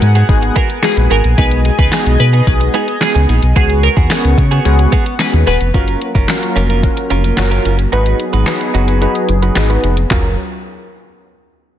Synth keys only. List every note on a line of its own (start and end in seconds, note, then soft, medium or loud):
0.29 0.61 G#3 loud
0.29 0.61 B3 medium
0.29 0.61 D#4 medium
0.29 0.61 F#4 medium
0.29 0.61 G#4 loud
0.83 1.15 G#3 medium
0.83 1.15 B3 medium
0.83 1.15 D#4 medium
0.83 1.15 F#4 medium
0.83 1.16 B4 medium
1.38 1.70 G#3 medium
1.38 1.70 B3 medium
1.38 1.70 D#4 medium
1.38 1.70 F#4 medium
1.38 1.70 G#4 medium
1.92 2.24 G#3 medium
1.92 2.24 B3 medium
1.92 2.24 D#4 medium
1.92 2.25 F#4 medium
1.92 2.25 G#4 medium
2.47 2.79 G#3 medium
2.47 2.79 B3 medium
2.47 2.79 D#4 medium
2.47 2.79 F#4 medium
2.47 2.79 G#4 medium
3.01 3.33 G#3 medium
3.01 3.33 B3 medium
3.01 3.33 D#4 medium
3.01 3.34 F#4 medium
3.01 3.34 G#4 medium
3.56 3.88 G#3 medium
3.56 3.88 B3 medium
3.56 3.88 C#4 medium
3.56 3.88 F#4 medium
3.56 3.88 G#4 loud
4.10 4.42 G#3 medium
4.10 4.42 B3 medium
4.10 4.42 C#4 medium
4.10 4.43 F#4 medium
4.10 4.43 G#4 loud
4.65 4.97 G#3 medium
4.65 4.97 B3 medium
4.65 4.97 C#4 medium
4.65 4.97 F#4 medium
4.65 4.97 G#4 loud
5.20 5.52 G#3 medium
5.20 5.52 B3 medium
5.20 5.52 C#4 medium
5.20 5.52 F#4 medium
5.20 5.52 G#4 medium
5.74 6.06 C#4 medium
5.74 6.06 F4 medium
5.74 6.06 F#4 medium
5.74 6.06 A#4 loud
6.28 6.61 C#4 medium
6.28 6.61 F4 medium
6.28 6.61 F#4 medium
6.28 6.61 A#4 loud
6.83 7.15 C#4 medium
6.83 7.15 F4 medium
6.83 7.15 F#4 medium
6.83 7.15 A#4 medium
7.37 7.70 C#4 loud
7.37 7.70 F4 medium
7.37 7.70 F#4 medium
7.37 7.70 A#4 loud
7.92 8.24 D#4 medium
7.92 8.24 F#4 medium
7.92 8.24 G#4 medium
7.92 8.24 B4 loud
8.47 8.79 D#4 medium
8.47 8.79 F#4 medium
8.47 8.79 G#4 medium
8.47 8.79 B4 loud
9.01 9.33 D#4 medium
9.01 9.33 F#4 medium
9.01 9.33 G#4 medium
9.01 9.34 B4 loud
9.56 9.88 D#4 loud
9.56 9.88 F#4 medium
9.56 9.88 G#4 medium
9.56 9.88 B4 loud
10.11 10.36 C#4 medium
10.11 10.36 F4 medium
10.11 10.36 F#4 medium
10.11 10.36 A#4 loud